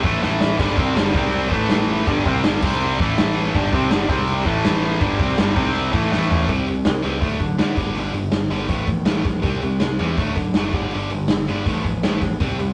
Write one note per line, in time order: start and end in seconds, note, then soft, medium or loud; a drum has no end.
0.02 0.21 A1 loud
0.02 0.21 A2 medium
0.02 0.21 E3 medium
0.02 0.21 A3 medium
0.02 kick loud
0.22 0.56 A1 loud
0.22 0.58 A2 medium
0.22 0.58 E3 loud
0.22 0.58 A3 loud
0.22 snare medium
0.41 snare loud
0.59 0.76 G1 loud
0.59 0.76 G2 loud
0.59 0.77 D3 medium
0.59 0.77 G3 medium
0.59 kick loud
0.59 crash medium
0.77 0.94 C2 loud
0.77 0.95 C3 loud
0.77 0.95 G3 loud
0.77 0.95 C4 medium
0.77 kick loud
0.95 1.12 G1 loud
0.95 1.13 G2 medium
0.95 1.12 D3 loud
0.95 1.12 G3 loud
0.95 snare loud
0.95 crash medium
1.12 1.48 C2 loud
1.12 1.51 C3 medium
1.12 1.52 G3 medium
1.12 1.52 C4 loud
1.12 kick loud
1.33 crash medium
1.51 2.02 A1 medium
1.51 2.06 A2 medium
1.51 2.06 E3 medium
1.51 2.06 A3 medium
1.51 kick loud
1.70 snare loud
1.70 crash medium
2.07 2.24 G1 loud
2.07 2.24 G2 medium
2.07 2.24 D3 medium
2.07 2.25 G3 loud
2.07 kick loud
2.07 crash medium
2.25 2.42 C2 loud
2.25 2.43 C3 medium
2.25 2.43 G3 loud
2.25 2.43 C4 loud
2.25 kick loud
2.44 2.61 G1 loud
2.44 2.62 G2 medium
2.44 2.62 D3 medium
2.44 2.62 G3 loud
2.44 snare loud
2.44 crash medium
2.62 2.96 C2 loud
2.62 2.99 C3 medium
2.62 2.99 G3 loud
2.62 2.99 C4 loud
2.62 kick loud
2.62 crash loud
2.81 crash medium
2.99 3.50 A1 loud
2.99 3.54 A2 medium
2.99 3.54 E3 medium
2.99 3.55 A3 medium
2.99 kick loud
3.18 snare loud
3.18 crash medium
3.55 3.71 G1 loud
3.55 3.72 G2 loud
3.55 3.72 D3 loud
3.55 3.72 G3 loud
3.55 kick loud
3.55 crash medium
3.73 3.89 C2 loud
3.73 3.91 C3 medium
3.73 3.91 G3 loud
3.73 3.91 C4 loud
3.73 kick loud
3.90 4.08 G1 loud
3.90 4.09 G2 loud
3.90 4.09 D3 medium
3.90 4.09 G3 loud
3.90 snare loud
3.90 crash medium
4.09 4.43 C2 medium
4.09 4.46 C3 medium
4.09 4.46 G3 medium
4.09 4.46 C4 medium
4.09 kick loud
4.27 crash medium
4.45 4.97 A1 loud
4.45 5.01 A2 medium
4.45 5.01 E3 medium
4.45 5.01 A3 medium
4.45 kick loud
4.65 snare loud
4.65 crash medium
5.01 5.18 G1 loud
5.01 5.19 G2 medium
5.01 5.19 D3 loud
5.01 5.18 G3 loud
5.01 kick loud
5.01 crash medium
5.19 5.36 C2 loud
5.19 5.37 C3 medium
5.19 5.37 G3 loud
5.19 5.38 C4 loud
5.19 kick loud
5.38 5.55 G1 loud
5.38 5.56 G2 medium
5.38 5.55 D3 medium
5.38 5.54 G3 loud
5.38 snare loud
5.38 crash medium
5.55 5.91 C2 medium
5.55 5.92 C3 medium
5.55 5.92 G3 medium
5.55 5.93 C4 loud
5.55 kick loud
5.75 crash medium
5.92 6.10 A1 medium
5.92 6.11 A2 medium
5.92 6.11 E3 medium
5.92 6.11 A3 medium
5.92 kick loud
6.11 6.46 A1 loud
6.11 6.48 A2 medium
6.11 6.48 E3 loud
6.11 6.49 A3 loud
6.11 snare medium
6.31 floor tom medium
6.48 6.66 C2 loud
6.48 6.66 C3 medium
6.48 6.67 G3 medium
6.48 6.67 C4 medium
6.48 kick loud
6.48 open hi-hat medium
6.67 6.85 C2 medium
6.67 6.84 C3 medium
6.67 6.84 G3 medium
6.67 open hi-hat soft
6.85 7.03 C2 loud
6.85 7.01 C3 medium
6.85 7.02 G3 medium
6.85 snare loud
6.85 open hi-hat medium
7.02 7.21 C#2 medium
7.02 7.20 C3 medium
7.02 7.21 G3 medium
7.02 7.21 C4 medium
7.02 open hi-hat medium
7.21 7.39 D2 medium
7.21 7.38 D3 medium
7.21 7.38 F#3 medium
7.21 7.39 A3 medium
7.21 kick medium
7.21 open hi-hat medium
7.39 7.57 D3 medium
7.39 7.57 F#3 medium
7.39 kick medium
7.39 open hi-hat medium
7.58 7.75 D3 medium
7.58 7.76 D3 medium
7.58 7.76 F#3 loud
7.58 7.77 A3 loud
7.58 snare loud
7.58 open hi-hat medium
7.76 7.94 G1 medium
7.76 7.94 G2 medium
7.76 7.95 D3 medium
7.76 7.95 G3 medium
7.76 kick loud
7.76 open hi-hat medium
7.95 8.12 G1 loud
7.95 8.13 G2 medium
7.95 8.13 D3 medium
7.95 8.14 G3 medium
7.95 open hi-hat medium
8.13 8.31 G1 medium
8.13 8.30 G2 medium
8.13 8.31 D3 medium
8.13 open hi-hat medium
8.31 8.49 G1 medium
8.31 8.49 G2 medium
8.31 8.49 D3 medium
8.31 snare loud
8.31 open hi-hat medium
8.50 8.68 G1 medium
8.50 8.68 G2 medium
8.50 8.68 D3 medium
8.50 8.68 G3 medium
8.50 open hi-hat medium
8.68 8.87 A1 medium
8.68 8.85 A2 medium
8.68 8.85 F3 loud
8.68 8.87 A3 medium
8.68 kick loud
8.68 open hi-hat medium
8.86 9.05 A1 medium
8.86 9.04 A2 medium
8.86 9.04 F3 medium
8.86 kick medium
8.86 open hi-hat medium
9.05 9.23 A1 medium
9.05 9.24 A2 medium
9.05 9.24 F3 loud
9.05 9.24 A3 loud
9.05 snare loud
9.05 open hi-hat medium
9.25 9.43 A1 medium
9.25 9.42 A2 medium
9.25 9.42 F3 medium
9.25 kick medium
9.25 open hi-hat medium
9.42 9.61 C2 medium
9.42 9.61 C3 medium
9.42 9.61 G3 medium
9.42 9.62 C4 medium
9.42 kick loud
9.42 open hi-hat medium
9.62 9.80 C2 loud
9.62 9.78 C3 medium
9.62 9.79 G3 medium
9.62 open hi-hat soft
9.80 9.98 C2 loud
9.80 9.97 C3 medium
9.80 9.98 G3 medium
9.80 snare loud
9.80 open hi-hat medium
9.99 10.17 E2 medium
9.99 10.17 C3 medium
9.99 10.17 G3 medium
9.99 10.17 C4 medium
9.99 open hi-hat medium
10.17 10.35 D2 medium
10.17 10.35 D3 medium
10.17 10.36 F#3 medium
10.17 10.36 A3 loud
10.17 kick loud
10.17 open hi-hat medium
10.35 10.53 D3 medium
10.35 10.54 F#3 medium
10.35 kick medium
10.35 open hi-hat medium
10.54 10.73 F#1 medium
10.54 10.73 D3 loud
10.54 10.73 F#3 medium
10.54 10.74 A3 medium
10.54 snare loud
10.54 open hi-hat medium
10.72 10.91 G1 medium
10.72 10.91 G2 medium
10.72 10.91 D3 medium
10.72 10.91 G3 medium
10.72 kick loud
10.72 open hi-hat medium
10.91 11.10 G1 loud
10.91 11.10 G2 medium
10.91 11.10 D3 medium
10.91 11.10 G3 medium
10.91 open hi-hat medium
11.10 11.28 G1 medium
11.10 11.28 G2 medium
11.10 11.28 D3 medium
11.10 open hi-hat medium
11.28 11.47 G1 medium
11.28 11.47 G2 medium
11.28 11.47 D3 medium
11.28 snare loud
11.28 open hi-hat medium
11.47 11.65 G1 medium
11.47 11.66 G2 medium
11.47 11.66 D3 medium
11.47 11.66 G3 medium
11.47 open hi-hat medium
11.66 11.83 A1 medium
11.66 11.84 A2 medium
11.66 11.84 F3 loud
11.66 11.84 A3 medium
11.66 kick loud
11.66 open hi-hat medium
11.84 12.02 A1 medium
11.84 12.02 A2 medium
11.84 12.02 F3 medium
11.84 kick medium
11.84 open hi-hat medium
12.03 12.21 A1 medium
12.03 12.21 A2 loud
12.03 12.21 F3 loud
12.03 12.21 A3 loud
12.03 snare loud
12.03 open hi-hat medium
12.21 12.39 A1 medium
12.21 12.39 A2 medium
12.21 12.39 F3 medium
12.21 kick medium
12.21 open hi-hat medium
12.40 12.58 C2 medium
12.40 12.57 C3 medium
12.40 12.57 G3 medium
12.40 12.58 C4 loud
12.40 kick loud
12.40 open hi-hat medium
12.58 12.73 C2 medium
12.58 12.73 C3 medium
12.58 12.73 G3 medium
12.58 open hi-hat medium